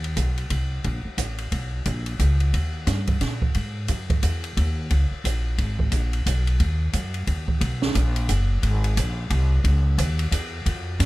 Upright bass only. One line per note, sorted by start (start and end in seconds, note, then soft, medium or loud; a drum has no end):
0.00 0.16 D#2 medium
0.17 0.49 B1 medium
0.50 0.83 C2 medium
0.85 1.04 A#1 medium
1.05 muted upright bass stroke soft
1.18 1.51 A1 medium
1.52 1.85 B1 medium
1.86 2.19 A#1 medium
2.19 2.52 C#2 medium
2.53 2.86 D#2 medium
2.87 3.20 G2 medium
3.21 3.54 A#2 medium
3.55 3.88 G#2 medium
3.89 4.22 F#2 medium
4.23 4.56 E2 medium
4.57 4.90 D#2 medium
4.91 5.10 C#2 medium
5.11 muted upright bass stroke soft
5.24 5.57 A#1 medium
5.58 5.91 G#1 medium
5.92 6.25 A#1 medium
6.26 6.59 B1 medium
6.60 6.93 D#2 medium
6.93 7.26 F#2 medium
7.27 7.60 D#2 medium
7.61 7.94 B1 medium
7.95 8.28 A#1 medium
8.29 8.62 F#1 medium
8.63 8.96 G#1 medium
8.97 9.30 A#1 medium
9.30 9.63 C2 medium
9.64 9.97 C#2 medium
9.98 10.31 D#2 loud
10.31 10.64 E2 medium
10.66 10.99 F2 medium
11.00 11.05 G2 medium